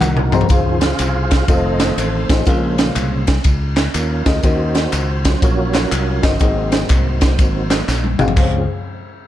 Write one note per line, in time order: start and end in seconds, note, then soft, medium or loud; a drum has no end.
0.01 0.43 C2 loud
0.01 0.47 D#4 medium
0.01 0.47 F#4 medium
0.01 0.47 A#4 loud
0.01 0.30 F#5 medium
0.01 clap loud
0.01 mid tom medium
0.01 tambourine medium
0.17 mid tom medium
0.32 0.43 C4 medium
0.32 0.43 D#4 medium
0.32 0.43 F#4 medium
0.32 0.43 G#4 medium
0.32 0.43 C5 loud
0.32 0.49 A#5 medium
0.32 floor tom loud
0.32 tambourine medium
0.41 floor tom medium
0.46 0.87 D#3 medium
0.46 1.08 C#4 medium
0.46 0.50 B4 medium
0.46 kick loud
0.46 ride bell medium
0.46 tambourine medium
0.50 0.92 C#2 loud
0.50 1.27 C#3 medium
0.50 0.87 F3 soft
0.50 1.08 F4 medium
0.50 1.45 F4 medium
0.50 1.08 G#4 medium
0.50 0.81 G#4 medium
0.50 0.82 C5 loud
0.50 1.09 C5 medium
0.50 1.09 F5 medium
0.81 1.45 G#4 medium
0.81 1.45 C5 medium
0.81 1.51 F5 loud
0.81 snare loud
0.81 ride bell medium
0.81 tambourine medium
0.99 1.41 C2 medium
0.99 clap medium
0.99 ride bell medium
0.99 tambourine medium
1.31 kick medium
1.31 snare loud
1.31 ride bell medium
1.31 tambourine medium
1.47 1.90 F1 loud
1.47 2.42 D#3 medium
1.47 2.43 A3 medium
1.47 2.43 C4 medium
1.47 2.10 D#4 medium
1.47 2.10 F4 medium
1.47 2.43 A4 medium
1.47 2.11 A4 medium
1.47 1.97 C5 medium
1.47 2.11 C5 medium
1.47 1.99 D#5 loud
1.47 2.11 F5 medium
1.47 kick loud
1.47 ride bell medium
1.47 tambourine medium
1.80 snare loud
1.80 clap medium
1.80 ride bell medium
1.80 tambourine medium
1.97 2.24 A1 medium
1.97 2.31 C5 loud
1.97 clap medium
1.97 ride bell medium
1.97 tambourine medium
2.29 2.44 A1 medium
2.29 3.24 C#4 medium
2.29 2.39 D#4 medium
2.29 2.39 F4 medium
2.29 3.24 F4 medium
2.29 2.76 G#4 medium
2.29 2.39 A4 medium
2.29 2.40 C5 medium
2.29 2.40 D#5 medium
2.29 kick loud
2.29 snare loud
2.29 ride bell medium
2.29 tambourine medium
2.46 2.89 A#1 loud
2.46 3.24 A#2 medium
2.46 3.24 C#3 medium
2.46 3.24 G#3 medium
2.46 3.05 C#4 medium
2.46 3.05 F4 medium
2.46 3.05 G#4 medium
2.46 3.05 A#4 medium
2.46 3.25 C5 medium
2.46 3.05 F5 medium
2.46 kick loud
2.46 ride bell medium
2.46 tambourine medium
2.78 snare loud
2.78 ride bell medium
2.78 tambourine medium
2.96 3.38 C2 loud
2.96 clap medium
2.96 ride bell medium
2.96 tambourine medium
3.27 kick medium
3.27 snare loud
3.27 ride bell medium
3.27 tambourine medium
3.44 3.87 C#2 loud
3.44 kick loud
3.44 ride bell medium
3.44 tambourine medium
3.77 snare loud
3.77 clap medium
3.77 ride bell medium
3.77 tambourine medium
3.94 4.22 D#2 loud
3.94 4.41 C#4 medium
3.94 4.40 F4 medium
3.94 4.45 A#4 loud
3.94 clap medium
3.94 ride bell medium
3.94 tambourine medium
4.26 4.41 D2 medium
4.26 4.36 C#4 medium
4.26 4.36 F4 medium
4.26 4.36 G#4 medium
4.26 4.36 A#4 medium
4.26 4.36 D#5 medium
4.26 kick loud
4.26 snare loud
4.26 ride bell medium
4.26 tambourine medium
4.43 4.86 D#2 loud
4.43 5.21 D#3 medium
4.43 5.02 C#4 medium
4.43 5.02 D#4 medium
4.43 5.02 F#4 medium
4.43 5.38 F#4 medium
4.43 5.02 A#4 medium
4.43 5.45 C5 loud
4.43 5.02 D#5 medium
4.43 kick loud
4.43 ride bell medium
4.43 tambourine medium
4.75 snare loud
4.75 ride bell medium
4.75 tambourine medium
4.92 5.35 C#2 medium
4.92 clap medium
4.92 ride bell medium
4.92 tambourine medium
5.25 6.37 F#3 soft
5.25 6.37 C#4 medium
5.25 6.37 F4 medium
5.25 kick medium
5.25 snare loud
5.25 ride bell medium
5.25 tambourine medium
5.42 5.84 A#1 loud
5.42 6.23 F#4 medium
5.42 5.93 A#4 medium
5.42 5.89 C#5 loud
5.42 kick loud
5.42 ride bell medium
5.42 tambourine medium
5.74 snare loud
5.74 clap medium
5.74 ride bell medium
5.74 tambourine medium
5.92 6.18 C2 medium
5.92 6.25 A#4 loud
5.92 clap medium
5.92 ride bell medium
5.92 tambourine medium
6.22 6.38 G1 medium
6.22 6.32 C#4 medium
6.22 6.33 D#4 medium
6.22 7.84 D#4 medium
6.22 6.33 F#4 medium
6.22 7.84 F#4 medium
6.22 6.33 A#4 medium
6.22 7.85 C5 loud
6.22 6.33 D#5 medium
6.22 kick loud
6.22 snare loud
6.22 ride bell medium
6.22 tambourine medium
6.39 6.83 G#1 loud
6.39 7.18 G#2 medium
6.39 7.68 F#3 medium
6.39 7.69 A#3 medium
6.39 6.98 C4 medium
6.39 7.69 C4 medium
6.39 6.99 D#4 medium
6.39 6.99 F#4 medium
6.39 6.99 G#4 medium
6.39 6.99 D#5 medium
6.39 kick loud
6.39 ride bell medium
6.39 tambourine medium
6.72 snare loud
6.72 ride bell medium
6.72 tambourine medium
6.89 7.39 C2 loud
6.89 kick loud
6.89 clap medium
6.89 ride bell medium
6.89 tambourine loud
7.21 kick medium
7.21 snare loud
7.21 ride bell medium
7.21 tambourine medium
7.39 7.81 G#1 medium
7.39 kick loud
7.39 ride bell medium
7.39 tambourine medium
7.70 7.86 F#3 medium
7.70 7.86 A#3 soft
7.70 7.86 C4 medium
7.70 snare loud
7.70 clap medium
7.70 ride bell medium
7.70 tambourine medium
7.88 8.15 A#1 medium
7.88 snare medium
7.88 clap medium
7.88 tambourine medium
8.04 high tom medium
8.18 8.34 G#1 medium
8.18 8.29 C4 medium
8.18 8.29 D#4 medium
8.18 8.29 F#4 medium
8.18 8.29 G#4 medium
8.18 8.29 F5 medium
8.18 mid tom loud
8.18 tambourine medium
8.28 floor tom medium
8.36 8.66 C#2 loud
8.36 8.66 C#2 medium
8.36 8.66 F3 medium
8.36 8.66 G#3 medium
8.36 8.66 C4 medium
8.36 8.66 C#4 medium
8.36 8.67 C#4 medium
8.36 8.66 G#4 medium
8.36 8.67 C5 medium
8.36 8.66 F5 medium
8.36 kick loud
8.36 clap medium
8.36 crash medium